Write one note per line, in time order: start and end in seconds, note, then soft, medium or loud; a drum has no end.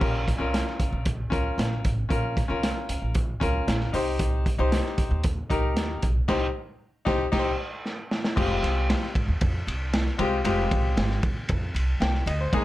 0.00 0.31 A#1 medium
0.00 0.27 C#4 medium
0.00 0.28 F4 medium
0.00 0.12 G4 medium
0.00 0.28 A#4 medium
0.00 kick loud
0.00 crash medium
0.28 kick medium
0.28 snare soft
0.28 closed hi-hat medium
0.38 0.60 C2 medium
0.38 1.02 C#4 medium
0.38 1.02 F4 medium
0.38 1.03 A#4 medium
0.54 snare loud
0.54 closed hi-hat medium
0.67 snare soft
0.80 0.90 C#2 medium
0.80 kick medium
0.80 closed hi-hat medium
0.92 1.23 A#1 medium
1.05 kick loud
1.05 closed hi-hat medium
1.30 1.52 C#2 medium
1.30 1.85 C#4 medium
1.30 1.85 F4 medium
1.30 1.86 A#4 medium
1.30 kick medium
1.30 closed hi-hat medium
1.58 1.78 A#1 medium
1.58 snare medium
1.58 closed hi-hat medium
1.85 2.05 A1 medium
1.85 kick loud
1.85 closed hi-hat medium
2.09 2.41 A#1 loud
2.09 2.36 C#4 medium
2.09 2.37 F4 medium
2.09 2.37 A#4 medium
2.09 kick loud
2.09 closed hi-hat medium
2.37 kick medium
2.37 snare soft
2.37 closed hi-hat medium
2.48 2.70 C2 medium
2.48 3.11 C#4 medium
2.48 3.12 F4 medium
2.48 3.12 A#4 medium
2.63 snare loud
2.63 closed hi-hat medium
2.89 2.99 C#2 medium
2.89 closed hi-hat medium
3.02 3.32 A#1 medium
3.15 kick loud
3.15 closed hi-hat medium
3.40 3.61 C#2 medium
3.40 3.93 C#4 medium
3.40 3.93 F4 medium
3.40 3.94 A#4 medium
3.40 kick medium
3.40 closed hi-hat medium
3.68 3.88 A#1 medium
3.68 snare loud
3.68 closed hi-hat medium
3.81 snare soft
3.93 4.44 C2 medium
3.93 4.45 D#4 medium
3.93 4.46 G4 medium
3.93 4.46 C5 medium
3.93 open hi-hat medium
4.19 kick loud
4.19 closed hi-hat medium
4.46 kick medium
4.46 closed hi-hat medium
4.58 4.79 C2 loud
4.58 5.21 D#4 medium
4.58 5.21 G4 medium
4.58 5.22 C5 medium
4.72 snare loud
4.72 closed hi-hat medium
4.86 snare soft
4.98 5.08 C#2 medium
4.98 kick medium
4.98 closed hi-hat medium
5.11 5.41 D#2 medium
5.24 kick loud
5.24 closed hi-hat medium
5.50 5.77 C2 medium
5.50 6.03 D#4 medium
5.50 6.04 G4 medium
5.50 6.04 A#4 medium
5.50 kick medium
5.50 closed hi-hat medium
5.77 5.97 D#2 medium
5.77 snare loud
5.77 closed hi-hat medium
6.02 6.23 B1 medium
6.02 kick medium
6.02 closed hi-hat medium
6.28 6.46 C2 loud
6.28 6.46 D#4 loud
6.28 6.46 G4 loud
6.28 6.47 C5 medium
6.28 kick loud
6.28 snare loud
6.28 crash medium
7.05 7.24 C2 loud
7.05 7.23 D#4 loud
7.05 7.24 G4 loud
7.05 7.25 C5 loud
7.05 kick loud
7.05 snare loud
7.32 7.50 C2 loud
7.32 7.50 D#4 loud
7.32 7.50 G4 loud
7.32 7.50 G5 loud
7.32 kick loud
7.32 snare loud
7.32 crash medium
7.39 7.54 C5 loud
7.86 snare medium
8.11 snare medium
8.24 snare medium
8.36 8.57 F1 loud
8.36 9.07 G#3 medium
8.36 9.07 C4 medium
8.36 9.08 F4 medium
8.36 9.08 G4 medium
8.36 kick loud
8.36 crash medium
8.63 8.93 C2 loud
8.63 snare soft
8.63 ride medium
8.90 snare loud
8.90 ride medium
9.03 snare soft
9.15 9.25 G#1 medium
9.15 kick medium
9.15 ride medium
9.28 9.38 D#2 medium
9.41 9.61 F2 loud
9.41 kick loud
9.41 ride medium
9.67 10.07 C2 medium
9.67 ride medium
9.93 snare loud
9.93 ride medium
10.06 snare soft
10.18 10.39 C2 loud
10.18 10.36 G#3 medium
10.18 10.37 C4 medium
10.18 10.37 F4 medium
10.18 10.37 G4 medium
10.18 ride medium
10.44 10.65 F1 loud
10.44 11.16 G#3 medium
10.44 11.16 C4 medium
10.44 11.16 F4 medium
10.44 11.16 G4 medium
10.44 ride medium
10.71 10.91 C2 medium
10.71 kick medium
10.71 ride medium
10.97 11.17 G#1 medium
10.97 snare loud
10.97 ride medium
11.11 snare soft
11.23 11.43 D#2 medium
11.23 kick loud
11.23 ride medium
11.49 11.69 F2 loud
11.49 kick loud
11.49 ride medium
11.74 11.94 C2 medium
11.74 ride medium
12.00 12.20 C2 medium
12.00 12.25 G5 medium
12.00 snare loud
12.00 ride medium
12.15 snare soft
12.26 12.46 D2 loud
12.26 12.39 D#5 medium
12.26 ride medium
12.41 12.64 C5 medium
12.53 12.64 D#2 loud
12.53 12.64 G#3 medium
12.53 12.64 A#3 medium
12.53 12.64 D#4 medium
12.53 12.64 G#4 medium
12.53 kick loud
12.53 ride medium